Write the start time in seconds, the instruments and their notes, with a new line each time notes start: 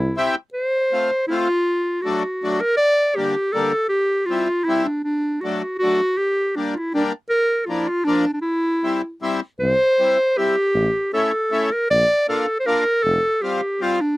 Already playing: tuba C2, clarinet E4
0.17 accordion C4 E4 G4
0.53 clarinet C5
0.93 accordion A3 C4 F4
1.28 accordion A3 C4 F4, clarinet F4
2.01 accordion A3, clarinet F#4
2.06 accordion F#3 D4
2.44 accordion F#3 A3 D4
2.60 clarinet A#4
2.77 clarinet D5
3.16 accordion D3 G3 A#3 D4, clarinet G4
3.52 accordion D3 G3 A#3 D4, clarinet A4
3.89 clarinet G4
4.26 clarinet F4
4.30 accordion G3 C4 E4
4.64 clarinet E4
4.68 accordion G3 C4 E4
4.85 clarinet D4
5.04 clarinet D4
5.41 accordion F#3 A3 D4, clarinet F#4
5.78 clarinet F#4
5.83 accordion F#3 A3 D4
6.17 clarinet G4
6.55 accordion G3 A#3 D4, clarinet D4
6.74 clarinet E4 F4
6.94 accordion G3 A#3 D4, clarinet D4
7.30 clarinet A#4
7.65 accordion F3 A#3, clarinet E4 F4
7.70 accordion D4
7.88 clarinet F4
8.05 accordion F3 A#3 D4, clarinet D4
8.33 clarinet D4
8.41 clarinet E4
8.84 accordion G3 C4 E4
9.22 accordion G3 C4 E4
9.60 tuba C2, clarinet C5
9.99 accordion G3 C4 E4
10.37 accordion G3 C4 E4, clarinet G4
10.74 tuba A1
11.13 accordion A3 C#4 E4, clarinet A4
11.52 accordion A3 C#4 E4
11.73 clarinet A#4
11.90 tuba A#1, clarinet D5
12.28 accordion A#3 D4 F4, clarinet A4
12.60 clarinet C5
12.66 accordion A#3 D4 F4, clarinet A#4
13.03 tuba F1, clarinet A4
13.42 accordion G3 C4 F4, clarinet G4
13.81 accordion G3 C4 F4, clarinet F4
14.01 clarinet D4